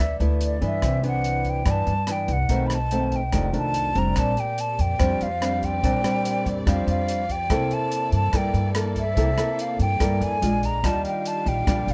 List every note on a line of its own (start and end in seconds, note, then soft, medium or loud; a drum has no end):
0.00 0.19 D2 medium
0.00 0.81 D3 medium
0.00 0.16 E5 medium
0.20 0.59 D2 medium
0.20 0.58 A3 medium
0.20 0.59 B3 medium
0.20 0.59 E4 medium
0.20 closed hi-hat soft
0.41 closed hi-hat soft
0.45 0.63 D5 medium
0.61 0.81 G2 medium
0.61 1.00 E3 medium
0.61 1.00 B3 medium
0.61 1.00 D4 medium
0.61 kick soft
0.61 closed hi-hat soft
0.66 1.03 E5 medium
0.82 1.62 C2 medium
0.82 1.64 C3 medium
0.82 kick medium
0.82 cross-stick medium
0.82 closed hi-hat soft
1.03 1.62 E3 medium
1.03 1.63 B3 medium
1.03 1.63 D4 medium
1.03 closed hi-hat soft
1.08 1.51 F#5 medium
1.24 closed hi-hat soft
1.45 kick soft
1.45 closed hi-hat soft
1.50 1.72 G5 medium
1.65 2.47 G2 medium
1.65 1.85 G2 medium
1.65 1.93 E3 medium
1.65 1.93 B3 soft
1.65 1.93 D4 medium
1.65 kick medium
1.65 cross-stick medium
1.65 closed hi-hat soft
1.71 2.13 A5 medium
1.87 2.26 G2 medium
1.87 closed hi-hat soft
2.07 2.36 E3 soft
2.07 2.36 B3 medium
2.07 2.36 D4 medium
2.07 cross-stick medium
2.07 closed hi-hat soft
2.12 2.34 G5 medium
2.28 2.48 C2 medium
2.28 kick soft
2.28 closed hi-hat soft
2.33 2.68 F#5 medium
2.49 3.29 B1 medium
2.49 3.31 B2 medium
2.49 2.76 D#3 medium
2.49 2.76 A3 medium
2.49 2.77 C4 medium
2.49 kick soft
2.49 closed hi-hat soft
2.67 2.76 B5 medium
2.67 cross-stick medium
2.67 closed hi-hat soft
2.74 3.18 A5 medium
2.91 3.19 D#3 medium
2.91 3.19 A3 medium
2.91 3.20 C4 medium
2.91 closed hi-hat soft
3.12 kick soft
3.12 closed hi-hat soft
3.16 3.56 G5 medium
3.32 3.52 F1 medium
3.32 4.14 F2 medium
3.32 3.50 D#3 medium
3.32 3.50 A3 medium
3.32 3.51 D4 medium
3.32 kick medium
3.32 cross-stick soft
3.32 closed hi-hat soft
3.52 3.92 C2 medium
3.52 3.91 D#3 medium
3.52 3.92 A3 medium
3.52 3.92 D4 medium
3.52 closed hi-hat soft
3.58 4.00 A5 loud
3.74 closed hi-hat soft
3.95 4.15 F1 medium
3.95 4.33 G3 medium
3.95 4.34 C4 medium
3.95 4.34 D4 medium
3.95 4.21 A#5 medium
3.95 kick soft
3.95 closed hi-hat soft
4.15 4.35 A#1 medium
4.15 4.97 A#2 medium
4.15 7.46 C4 medium
4.15 7.46 G4 medium
4.15 10.79 D5 medium
4.15 4.41 A5 medium
4.15 kick medium
4.15 cross-stick medium
4.15 closed hi-hat soft
4.37 4.62 G5 loud
4.37 closed hi-hat soft
4.58 4.82 A5 medium
4.58 closed hi-hat soft
4.79 4.98 F2 medium
4.79 5.24 G5 medium
4.79 kick soft
4.79 closed hi-hat soft
4.99 5.19 F2 medium
4.99 5.81 F3 medium
4.99 5.26 G3 medium
4.99 5.26 C4 medium
4.99 5.27 D4 medium
4.99 kick medium
4.99 cross-stick soft
4.99 closed hi-hat soft
5.21 5.79 F2 medium
5.21 5.67 F5 medium
5.21 closed hi-hat soft
5.41 5.79 G3 medium
5.41 5.80 C4 soft
5.41 5.80 D4 medium
5.41 cross-stick medium
5.41 closed hi-hat soft
5.62 6.47 G5 loud
5.62 kick soft
5.62 closed hi-hat soft
5.83 6.03 A#1 medium
5.83 6.64 A#2 medium
5.83 6.01 G3 medium
5.83 6.01 C4 medium
5.83 6.01 D4 medium
5.83 kick medium
5.83 closed hi-hat soft
6.04 6.63 G3 medium
6.04 6.63 C4 medium
6.04 6.63 D4 medium
6.04 cross-stick medium
6.04 closed hi-hat soft
6.25 closed hi-hat soft
6.46 6.65 F2 medium
6.46 kick soft
6.46 closed hi-hat soft
6.67 6.86 F2 medium
6.67 7.48 F3 medium
6.67 7.22 G3 medium
6.67 7.23 C4 medium
6.67 7.23 D4 medium
6.67 6.88 F5 medium
6.67 kick medium
6.67 cross-stick medium
6.67 closed hi-hat soft
6.87 7.45 F2 medium
6.87 7.33 F5 medium
6.87 closed hi-hat soft
7.08 closed hi-hat soft
7.29 7.75 G5 loud
7.29 kick soft
7.29 closed hi-hat soft
7.49 7.69 C2 medium
7.49 8.31 C3 medium
7.49 10.80 A#3 medium
7.49 8.30 A#3 medium
7.49 10.38 E4 medium
7.49 8.30 E4 medium
7.49 10.39 A4 medium
7.49 8.30 A4 medium
7.49 kick medium
7.49 cross-stick medium
7.49 closed hi-hat soft
7.71 8.14 A5 medium
7.71 closed hi-hat soft
7.92 closed hi-hat soft
8.12 8.32 G2 medium
8.12 8.38 A5 loud
8.12 kick soft
8.12 closed hi-hat soft
8.33 8.52 G2 medium
8.33 9.15 G2 medium
8.33 8.71 A#3 medium
8.33 8.72 E4 soft
8.33 8.72 A4 medium
8.33 8.70 G5 medium
8.33 kick medium
8.33 cross-stick soft
8.33 closed hi-hat soft
8.53 9.12 G2 medium
8.53 closed hi-hat soft
8.75 9.02 A#3 soft
8.75 9.02 E4 soft
8.75 9.02 A4 medium
8.75 cross-stick medium
8.75 closed hi-hat soft
8.96 9.63 E5 medium
8.96 kick soft
8.96 closed hi-hat soft
9.17 9.36 C2 medium
9.17 9.98 C3 medium
9.17 9.29 A#3 medium
9.17 9.29 E4 medium
9.17 9.29 A4 medium
9.17 kick medium
9.17 closed hi-hat soft
9.37 9.97 A#3 medium
9.37 9.97 E4 medium
9.37 9.97 A4 medium
9.37 cross-stick medium
9.37 closed hi-hat soft
9.59 9.81 F5 medium
9.59 closed hi-hat soft
9.79 9.99 G2 medium
9.79 10.25 G5 medium
9.79 kick soft
9.79 closed hi-hat soft
10.00 10.40 G2 medium
10.00 10.19 G2 medium
10.00 10.40 A#3 medium
10.00 10.40 E4 medium
10.00 10.40 A4 medium
10.00 kick medium
10.00 cross-stick soft
10.00 closed hi-hat soft
10.21 10.40 F2 medium
10.21 10.67 G#5 medium
10.21 closed hi-hat soft
10.42 10.81 A#1 medium
10.42 10.80 G#3 medium
10.42 10.80 D4 medium
10.42 10.81 F4 medium
10.42 10.83 G#4 soft
10.42 closed hi-hat soft
10.63 10.88 A#5 medium
10.63 kick soft
10.63 closed hi-hat soft
10.84 11.03 D#2 medium
10.84 11.65 D#3 medium
10.84 11.64 G3 medium
10.84 11.94 D4 medium
10.84 11.64 D4 medium
10.84 11.64 F4 medium
10.84 11.94 G4 medium
10.84 11.94 F5 medium
10.84 11.06 A5 medium
10.84 kick medium
10.84 cross-stick medium
10.84 closed hi-hat soft
11.05 11.29 G5 medium
11.05 closed hi-hat soft
11.26 11.50 A5 medium
11.26 closed hi-hat soft
11.46 11.65 A#1 medium
11.46 11.92 G5 medium
11.46 kick soft
11.46 closed hi-hat soft
11.67 11.86 A#1 medium
11.67 11.94 A#2 medium
11.67 11.94 G3 soft
11.67 11.94 D4 medium
11.67 11.94 F4 medium
11.67 kick medium
11.67 cross-stick soft
11.67 closed hi-hat soft
11.87 11.94 A#1 medium
11.87 closed hi-hat soft